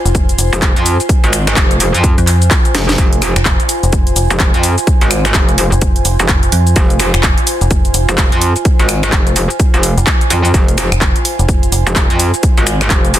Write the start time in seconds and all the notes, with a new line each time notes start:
Already playing: F4 C5 G#5
0.05 F1, closed hi-hat, shaker
0.15 kick, closed hi-hat, shaker
0.29 closed hi-hat, shaker
0.38 F1, open hi-hat, shaker
0.53 F1, closed hi-hat, shaker
0.62 kick, clap, closed hi-hat, shaker
0.76 F2, closed hi-hat, shaker
0.86 open hi-hat, shaker
1.00 closed hi-hat, shaker
1.09 kick, closed hi-hat, shaker
1.24 G#1, closed hi-hat, shaker
1.33 finger snap, open hi-hat, shaker
1.47 finger snap, closed hi-hat, shaker
1.56 F1, kick, clap, closed hi-hat, shaker
1.71 closed hi-hat, shaker
1.80 F1, open hi-hat, shaker
1.94 F2, closed hi-hat, shaker
2.04 kick, closed hi-hat, shaker
2.18 F2, closed hi-hat, shaker
2.27 clap, open hi-hat, shaker
2.42 closed hi-hat, shaker
2.51 kick, clap, closed hi-hat, shaker
2.65 closed hi-hat, shaker
2.75 F1, snare, open hi-hat, shaker
2.89 snare, closed hi-hat, shaker
2.98 F1, kick, closed hi-hat, shaker
3.13 closed hi-hat, shaker
3.22 finger snap, open hi-hat, shaker
3.36 F1, finger snap, closed hi-hat, shaker
3.45 kick, clap, closed hi-hat, shaker
3.60 closed hi-hat, shaker
3.69 open hi-hat, shaker
3.83 F1, closed hi-hat, shaker
3.93 kick, closed hi-hat, shaker
4.07 closed hi-hat, shaker
4.16 F1, open hi-hat, shaker
4.30 F1, closed hi-hat, shaker
4.40 kick, clap, closed hi-hat, shaker
4.54 F2, closed hi-hat, shaker
4.63 open hi-hat, shaker
4.78 closed hi-hat, shaker
4.87 kick, closed hi-hat, shaker
5.01 G#1, closed hi-hat, shaker
5.11 finger snap, open hi-hat, shaker
5.25 finger snap, closed hi-hat, shaker
5.34 F1, kick, clap, closed hi-hat, shaker
5.49 closed hi-hat, shaker
5.58 F1, open hi-hat, shaker
5.72 F1, closed hi-hat, shaker
5.82 kick, closed hi-hat, shaker
5.96 closed hi-hat, shaker
6.05 F1, open hi-hat, shaker
6.19 F1, closed hi-hat, shaker
6.28 F1, kick, clap, closed hi-hat, shaker
6.43 closed hi-hat, shaker
6.52 F2, open hi-hat, shaker
6.67 closed hi-hat, shaker
6.76 F1, kick, closed hi-hat, shaker
6.90 closed hi-hat, shaker
7.00 finger snap, open hi-hat, shaker
7.14 F1, finger snap, closed hi-hat, shaker
7.23 kick, clap, closed hi-hat, shaker
7.38 closed hi-hat, shaker
7.47 open hi-hat, shaker
7.61 F1, closed hi-hat, shaker
7.71 kick, closed hi-hat, shaker
7.85 closed hi-hat, shaker
7.94 F1, open hi-hat, shaker
8.09 F1, closed hi-hat, shaker
8.18 kick, clap, closed hi-hat, shaker
8.32 F2, closed hi-hat, shaker
8.42 open hi-hat, shaker
8.56 closed hi-hat, shaker
8.65 kick, closed hi-hat, shaker
8.79 G#1, closed hi-hat, shaker
8.89 finger snap, open hi-hat, shaker
9.03 finger snap, closed hi-hat, shaker
9.12 F1, kick, clap, closed hi-hat, shaker
9.27 closed hi-hat, shaker
9.36 F1, open hi-hat, shaker
9.50 closed hi-hat, shaker
9.60 kick, closed hi-hat, shaker
9.74 F1, closed hi-hat, shaker
9.83 open hi-hat, shaker
9.97 F1, closed hi-hat, shaker
10.07 kick, clap, closed hi-hat, shaker
10.21 closed hi-hat, shaker
10.30 F2, open hi-hat, shaker
10.45 closed hi-hat, shaker
10.54 F1, kick, closed hi-hat, shaker
10.68 closed hi-hat, shaker
10.78 finger snap, open hi-hat, shaker
10.92 F1, finger snap, closed hi-hat, shaker
11.01 kick, clap, closed hi-hat, shaker
11.16 closed hi-hat, shaker
11.25 open hi-hat, shaker
11.39 F1, closed hi-hat, shaker
11.49 kick, closed hi-hat, shaker
11.63 closed hi-hat, shaker
11.72 F1, open hi-hat, shaker
11.87 F1, closed hi-hat, shaker
11.96 kick, clap, closed hi-hat, shaker
12.10 F2, closed hi-hat, shaker
12.20 open hi-hat, shaker
12.34 closed hi-hat, shaker
12.43 kick, closed hi-hat, shaker
12.57 G#1, closed hi-hat, shaker
12.67 finger snap, open hi-hat, shaker
12.81 finger snap, closed hi-hat, shaker
12.90 F1, kick, clap, closed hi-hat, shaker
13.05 closed hi-hat, shaker
13.14 F1, open hi-hat, shaker